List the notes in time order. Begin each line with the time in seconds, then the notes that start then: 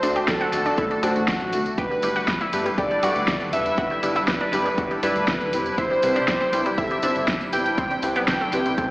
Already playing: A3 D4 F#4 C5
0.03 D2 D3 A3 D4 F#4 A4, open hi-hat, tambourine
0.16 G4, closed hi-hat
0.27 D4 A4, kick, snare, closed hi-hat, tambourine
0.41 F#4, closed hi-hat, tambourine
0.52 D2 D3 A3 D4 F#4 A4, snare, open hi-hat, tambourine
0.66 D4, closed hi-hat, tambourine
0.77 D3 A3 D4 E4 F#4 A4, kick, closed hi-hat, tambourine
0.90 D4, closed hi-hat, tambourine
1.03 D1 D3 A3 D4 F#4 C5, open hi-hat, tambourine
1.16 A1 D3 A3 D4 F#4 A4, closed hi-hat, tambourine
1.28 kick, snare, closed hi-hat, tambourine
1.41 closed hi-hat, tambourine
1.53 D2 A3 D4 F#4 A4, open hi-hat, tambourine
1.66 closed hi-hat, tambourine
1.78 G3 D4 E4 G4 A4 B4 D5 B5, kick, closed hi-hat, tambourine
1.91 G3, tambourine
2.02 G1 G3 D4 E4 G4 B4, open hi-hat, tambourine
2.16 F#4, closed hi-hat, tambourine
2.28 G3, kick, snare, closed hi-hat, tambourine
2.41 E4, closed hi-hat, tambourine
2.53 G1 G3 D4 E4 G4 B4, open hi-hat, tambourine
2.66 G3, closed hi-hat, tambourine
2.78 G3 D4 E4 G4 A4 D5, kick, closed hi-hat, tambourine
2.91 G3, closed hi-hat, tambourine
3.03 G2 G3 D4 E4 F#4 G4 D5, open hi-hat, tambourine
3.16 D2, closed hi-hat, tambourine
3.28 kick, snare, closed hi-hat, tambourine
3.41 closed hi-hat, tambourine
3.53 E1 G3 D4 E4 G4 B4 E5, open hi-hat, tambourine
3.66 closed hi-hat, tambourine
3.77 F#4, kick, closed hi-hat, tambourine
3.90 G3, tambourine
4.03 G1 G3 D4 E4 G4 B4, open hi-hat, tambourine
4.16 E4, closed hi-hat, tambourine
4.28 G3 B4, kick, snare, closed hi-hat, tambourine
4.41 D4, closed hi-hat, tambourine
4.53 G1 G3 D4 E4 G4 B4, snare, open hi-hat, tambourine
4.66 G3, closed hi-hat, tambourine
4.78 G3 D4 E4 F#4 G4 A4, kick, closed hi-hat, tambourine
4.91 G3, closed hi-hat, tambourine
5.03 G2 G3 D4 E4 G4 B4 D5, open hi-hat, tambourine
5.16 D2, closed hi-hat, tambourine
5.28 kick, snare, closed hi-hat, tambourine
5.41 closed hi-hat, tambourine
5.53 E1 C3 C4 E4 G4 B4, open hi-hat, tambourine
5.66 closed hi-hat, tambourine
5.78 C3 E4 C5, kick, closed hi-hat, tambourine
5.90 G3, tambourine
6.02 C2 C3 G3 C4 E4 G4 B4, open hi-hat, tambourine
6.16 D4, closed hi-hat, tambourine
6.28 G3, kick, snare, closed hi-hat, tambourine
6.41 C4, closed hi-hat, tambourine
6.53 C2 C3 G3 C4 E4 G4 B4, open hi-hat, tambourine
6.66 G3, closed hi-hat, tambourine
6.78 C3 C4 E4 G4 A4 E5, kick, closed hi-hat, tambourine
6.90 G3, closed hi-hat, tambourine
7.02 G1 C3 C4 D4 E4 G4 C5, open hi-hat, tambourine
7.16 G1, closed hi-hat, tambourine
7.28 kick, snare, closed hi-hat, tambourine
7.41 closed hi-hat, tambourine
7.53 G1 C3 C4 E4 G4 B4 G5, open hi-hat, tambourine
7.66 closed hi-hat, tambourine
7.77 C4, kick, closed hi-hat, tambourine
7.91 C3, closed hi-hat, tambourine
8.02 C2 C3 C4 E4 G4 B4, open hi-hat, tambourine
8.16 B3, closed hi-hat, tambourine
8.28 C3 G5, kick, snare, closed hi-hat, tambourine
8.41 A3, closed hi-hat, tambourine
8.52 C2 C3 C4 E4 G4 B4, snare, open hi-hat, tambourine
8.66 C3, closed hi-hat, tambourine
8.78 C3 C4 E4 G4 A4, kick, closed hi-hat, tambourine